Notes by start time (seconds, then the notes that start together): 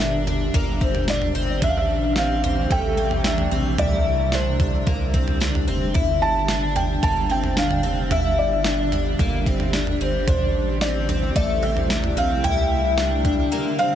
Already playing: G1 A#2 D3 G3 D4 G4 A#4
0.00 D4, snare
0.27 D4, floor tom
0.54 G1 A#3, kick, floor tom
0.81 C4, kick
0.95 floor tom
1.08 D4 D5, snare
1.22 floor tom
1.35 G1 C4
1.62 A1 C3 E3 A3 D4 E5, kick, floor tom
1.69 F5
1.78 E5
2.16 C4 F5, snare
2.44 C4, floor tom
2.70 A1 A3 G5, kick, floor tom
2.97 C4
3.11 floor tom
3.24 D4 E5, snare
3.38 floor tom
3.51 A#1 C4
3.78 C2 D3 G3 D4 E4 G4 D5, floor tom
4.32 D4 C5, snare
4.60 D4, kick, floor tom
4.87 C2 A#3, kick, floor tom
5.14 C4, kick
5.28 floor tom
5.40 D4, snare
5.55 floor tom
5.68 F1 C4
5.94 G1 A#2 E4, kick, floor tom
6.22 A5
6.48 D4, snare
6.76 D4 G5, floor tom
7.03 G1 A#3 A5, kick, floor tom
7.30 C4 G5
7.44 floor tom
7.57 D4 F5, snare
7.71 floor tom
7.83 F1 C4
8.11 G1 E4 E5, floor tom
8.39 D5
8.64 D4, snare
8.92 D4, floor tom
9.19 G1 A#3, kick, floor tom
9.46 C4, kick
9.60 floor tom
9.73 D4, snare
9.87 floor tom
10.00 G1 C4
10.27 A1 C3 A3 D4 E4 C5, kick, floor tom
10.81 C4 D5, snare
11.09 C4, floor tom
11.36 A1 A3 D5, kick, floor tom
11.62 C4 E5
11.77 floor tom
11.90 D4, snare
12.04 floor tom
12.16 A#1 C4 F5
12.43 C2 D3 D4 E4 G5, floor tom
12.98 D4, snare
13.25 D4, kick, floor tom
13.52 A#3
13.79 C4 F5